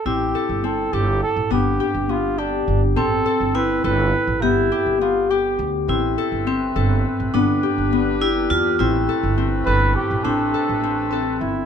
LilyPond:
<<
  \new Staff \with { instrumentName = "Flugelhorn" } { \time 5/8 \key a \minor \tempo 4 = 103 g'4 a'8 g'8 a'8 | g'4 f'8 d'8. r16 | a'4 b'8 b'4 | e'4 f'8 g'8. r16 |
r2 r8 | r2 r8 | r4. b'8 g'8 | a'2 e'8 | }
  \new Staff \with { instrumentName = "Vibraphone" } { \time 5/8 \key a \minor e'2~ e'8 | d'2~ d'8 | c'4 e'4. | g'2 r8 |
e'4 c'4. | d'4. e'8 f'8 | e'2~ e'8 | d'4. c'4 | }
  \new Staff \with { instrumentName = "Harp" } { \time 5/8 \key a \minor c'8 a'8 c'8 a'4 | b8 g'8 b8 g'4 | c'8 a'8 c'8 a'4 | b8 g'8 b8 g'4 |
c'8 a'8 c'8 a'4 | b8 g'8 b8 g'4 | c'8 a'8 c'8 a'4 | c'8 a'8 c'8 a'4 | }
  \new Staff \with { instrumentName = "Woodwind section" } { \time 5/8 \key a \minor r2 r8 | r2 r8 | r2 r8 | r2 r8 |
<a c' b'>2~ <a c' b'>8 | <g d' b'>2~ <g d' b'>8 | <c a b'>2~ <c a b'>8~ | <c a b'>2~ <c a b'>8 | }
  \new Staff \with { instrumentName = "Upright bass" } { \clef bass \time 5/8 \key a \minor a,,8 r16 g,,8. g,,8 r16 a,,16 | g,,8 r16 g,,4~ g,,16 g,,8 | a,,8 r16 g,,8. g,,8 r16 a,,16 | g,,8 r16 g,,4~ g,,16 d,8 |
a,,8 r16 g,,8. g,,8 r16 a,,16 | g,,8 r16 g,,4~ g,,16 e,8 | a,,8 r16 g,,8. g,,8 r16 a,,16 | a,,8 r16 a,,4~ a,,16 g,,8 | }
>>